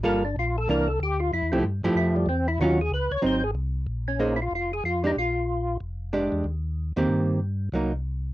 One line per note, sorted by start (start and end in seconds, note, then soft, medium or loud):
0.03 0.35 G1 medium
0.03 0.21 G3 medium
0.03 0.22 A#3 medium
0.03 0.22 F4 medium
0.03 0.22 A4 medium
0.03 0.24 A#4 medium
0.25 0.36 D4 medium
0.36 0.67 A#1 medium
0.36 0.57 F4 medium
0.58 0.69 A4 medium
0.68 0.99 C2 medium
0.68 0.86 E3 medium
0.68 0.86 A#3 medium
0.68 0.86 D4 medium
0.68 0.88 A#4 loud
0.88 0.99 A4 medium
1.00 1.31 D2 medium
1.00 1.21 G4 medium
1.20 1.31 F4 medium
1.33 1.43 F2 medium
1.33 1.52 E4 medium
1.42 1.53 E2 medium
1.52 1.63 C2 medium
1.52 1.63 F3 medium
1.52 1.63 A3 medium
1.52 1.59 C4 medium
1.52 1.63 E4 medium
1.52 1.63 G4 medium
1.64 1.82 G2 medium
1.83 1.89 G2 soft
1.83 2.25 F3 medium
1.83 2.26 A3 medium
1.83 2.26 E4 medium
1.83 2.26 G4 medium
1.95 2.26 F2 medium
1.95 2.15 E4 medium
2.16 2.28 G3 medium
2.26 2.58 E2 medium
2.26 2.47 C4 medium
2.48 2.59 E4 medium
2.58 2.90 D#2 medium
2.58 2.78 D#3 medium
2.58 2.78 F#3 medium
2.58 2.79 C#4 medium
2.58 2.79 F4 medium
2.58 2.80 F#4 medium
2.81 2.92 G#4 medium
2.90 3.09 C#2 loud
2.90 3.12 B4 medium
3.11 3.17 C#2 soft
3.11 3.23 C#5 loud
3.22 3.54 G#1 medium
3.22 3.40 F#3 medium
3.22 3.41 C4 medium
3.22 3.41 D#4 medium
3.26 3.44 C5 medium
3.44 3.51 G#4 loud
3.55 3.86 C2 medium
3.87 4.48 A#1 medium
4.08 4.20 C#4 medium
4.19 4.37 A#3 medium
4.19 4.38 C#4 medium
4.19 4.34 D#4 medium
4.19 4.38 G#4 medium
4.19 4.38 C5 medium
4.36 4.40 E4 medium
4.42 4.53 F4 medium
4.51 4.81 F1 medium
4.55 4.72 F4 medium
4.73 4.84 G#4 medium
4.84 5.13 F2 medium
4.84 5.03 F4 medium
5.04 5.15 G#3 medium
5.04 5.15 D4 medium
5.04 5.12 D#4 medium
5.04 5.15 G4 medium
5.16 5.77 A#1 medium
5.16 5.77 F4 medium
5.80 6.28 F1 medium
6.13 6.45 G#3 medium
6.13 6.45 D4 medium
6.13 6.45 G4 medium
6.32 6.43 E2 medium
6.44 6.92 D#2 medium
6.96 7.08 E2 medium
6.96 7.38 D#3 medium
6.96 7.38 A#3 medium
6.96 7.39 C4 medium
6.96 7.39 G4 medium
7.08 7.69 G2 medium
7.72 8.33 C2 medium
7.72 7.91 F#3 medium
7.72 7.91 A#3 medium
7.72 7.92 D#4 medium